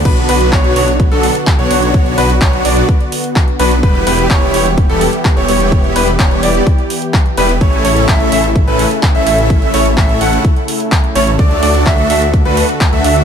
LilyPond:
<<
  \new Staff \with { instrumentName = "Grand piano" } { \time 4/4 \key b \minor \tempo 4 = 127 b'8 b'8 cis''8 cis''16 r8 a'8 r8 cis''16 cis''8~ | cis''8 b'16 r16 cis''8 d''8 r4. b'16 r16 | b'8 b'8 cis''8 cis''16 r8 a'8 r8 cis''16 cis''8~ | cis''8 b'16 r16 cis''8 d''8 r4. b'16 r16 |
cis''8 cis''8 e''8 e''16 r8 b'8 r8 e''16 e''8~ | e''8 cis''16 r16 e''8 fis''8 r4. cis''16 r16 | d''8 d''8 e''8 e''16 r8 b'8 r8 e''16 e''8 | }
  \new Staff \with { instrumentName = "Supersaw synth" } { \time 4/4 \key b \minor <fis b d' fis' b'>8 <fis b d' fis' b'>8 <fis b d' fis'>8 <fis b d' fis' cis''>16 r8 <fis b d' fis' a'>8 r8 <fis b d' fis' cis''>16 <fis b d' fis' cis''>8~ | <fis b d' fis' cis''>8 <fis b d' fis' b'>16 r16 <fis b d' fis' cis''>8 <fis b d' fis' d''>8 r4. <fis b d' fis' b'>16 r16 | <g b e' g' b'>8 <g b e' g' b'>8 r8 <g b e' g' cis''>16 r8 <g b e' g' a'>8 r8 <g b e' g' cis''>16 <g b e' g' cis''>8~ | <g b e' g' cis''>8 <g b e' g' b'>16 r16 <g b e' g'>8 <g b e' g' d''>8 r4. <g b e' g' b'>16 r16 |
<a cis' e' a' cis''>8 <a cis' e' a' cis''>8 cis'8 <a cis' e' a' e''>16 r8 <a cis' e' a' b'>8 r8 <a cis' e' a' e''>16 <a cis' e' a' e''>8~ | <a cis' e' a' e''>8 <a cis' e' a' cis''>16 r16 <a a' e''>8 <a cis' e' a' fis''>8 r4. <a cis' e' a' cis''>16 r16 | <a d' fis' a' d''>8 <a d' fis' a' d''>8 <a d' fis' a' e''>8 <a d' fis' a' e''>16 r8 <a d' fis' a' b'>8 r8 <a d' fis' a' e''>16 <a d' fis' a' e''>8 | }
  \new Staff \with { instrumentName = "Analog synth pad" } { \time 4/4 \key b \minor << { <d fis'>1~ | <d fis'>1 | <e g'>1~ | <e g'>1 |
<cis e'>1~ | <cis e'>1 | <d fis'>1 | } \\ { b1~ | b1~ | b1~ | b1 |
a1~ | a1~ | a1 | } >> }
  \new Staff \with { instrumentName = "Detuned saw bass" } { \clef bass \time 4/4 \key b \minor b,,8 b,,8 b,,8 b,,8. b,,16 r8. b,,16 b,,8~ | b,,8 b,,8 b,,8 b,,16 r4. r16 b,,8 | e,,8 e,,8 e,,8 e,,8. e,,16 r8. e,,16 e,,8~ | e,,8 e,,8 e,,8 e,,16 r4. r16 e,,8 |
a,,8 a,,8 a,,8 a,,8. a,,16 r8. a,,16 a,,8~ | a,,8 a,,8 a,,8 a,,16 r4. r16 a,,8 | d,8 d,8 d,8 d,8. d,16 r8. d,16 d,8 | }
  \new DrumStaff \with { instrumentName = "Drums" } \drummode { \time 4/4 <cymc hh bd>16 hh16 hho16 hh16 <hc hh bd>16 hh16 hho16 hh16 <hh bd>16 hh16 hho16 hh16 <hc hh bd>16 hh16 hho16 hh16 | <hh bd>16 hh16 hho16 hh16 <hc hh bd>16 hh16 hho16 hh16 <hh bd>16 hh16 hho16 hh16 <hc hh bd>16 hh16 hho16 hh16 | <hh bd>16 hh16 hho16 hh16 <hc hh bd>16 hh16 hho16 hh16 <hh bd>16 hh16 hho16 hh16 <hc hh bd>16 hh16 hho16 hh16 | <hh bd>16 hh16 hho16 hh16 <hc hh bd>16 hh16 hho16 hh16 <hh bd>16 hh16 hho16 hh16 <hc hh bd>16 hh16 hho16 hh16 |
<hh bd>16 hh16 hho16 hh16 <hc hh bd>16 hh16 hho16 hh16 <hh bd>16 hh16 hho16 hh16 <hc hh bd>16 hh16 hho16 hh16 | <hh bd>16 hh16 hho16 hh16 <hc hh bd>16 hh16 hho16 hh16 <hh bd>16 hh16 hho16 hh16 <hc hh bd>16 hh16 hho16 hh16 | <hh bd>16 hh16 hho16 hh16 <hc hh bd>16 hh16 hho16 hh16 <hh bd>16 hh16 hho16 hh16 <hc hh bd>16 hh16 hho16 hh16 | }
>>